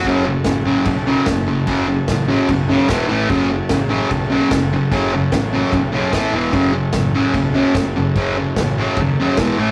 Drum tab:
CC |x-x-x-x-|x-x-x-x-|x-x-x-x-|x-x-x-x-|
SD |--o---o-|--o---o-|--o---o-|--o---o-|
BD |o-o-o-o-|o-o-o-o-|o-o-o-o-|o-o-o-o-|

CC |x-x-x-x-|x-x-x-x-|
SD |--o---o-|--o---o-|
BD |o-o-o-o-|o-o-o-o-|